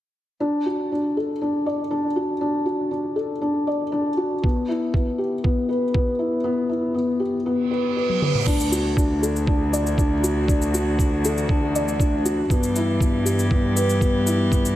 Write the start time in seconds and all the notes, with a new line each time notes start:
0.40 D4
0.66 F#4
0.92 D4
1.17 A4
1.41 D4
1.66 D5
1.91 D4
2.16 F#4
2.41 D4
2.65 F#4
2.91 D4
3.16 A4
3.41 D4
3.67 D5
3.92 D4
4.17 F#4
4.43 B3, kick
4.68 E4
4.94 B3, kick
5.18 G4
5.44 B3, kick
5.69 B4
5.94 B3, kick
6.19 E4
6.44 B3
6.69 E4
6.94 B3
7.20 G4
7.46 B3, reverse cymbal
7.71 B4
7.97 B4
8.09 high tom
8.22 B4, mid tom
8.35 mid tom
8.46 D2 E3 D4 F#4, kick, crash, shaker
8.60 shaker
8.72 F#4, shaker
8.97 D4, kick, shaker
9.22 A4, shaker
9.36 shaker
9.47 D4, kick
9.73 D5, shaker
9.87 shaker
9.98 D4, kick, shaker
10.23 F#4, shaker
10.48 D4, kick, shaker
10.62 shaker
10.74 F#4, shaker
10.99 D4, kick, shaker
11.25 A4, shaker
11.38 shaker
11.49 D4, kick
11.75 D5, shaker
11.88 shaker
12.00 D4, kick, shaker
12.25 F#4, shaker
12.50 G2 B3 G4, kick, shaker
12.63 shaker
12.76 E4, shaker
13.00 B3, kick, shaker
13.25 G4, shaker
13.39 shaker
13.51 B3, kick
13.76 B4, shaker
13.90 shaker
14.01 B3, kick, shaker
14.26 E4, shaker
14.52 B3, kick, shaker
14.65 shaker